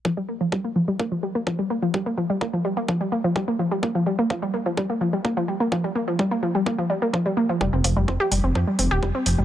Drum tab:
HH |--------|--------|--------|--------|
BD |o-o-o-o-|o-o-o-o-|o-o-o-o-|o-o-o-o-|

HH |-o-o-o-o|
BD |o-o-o-o-|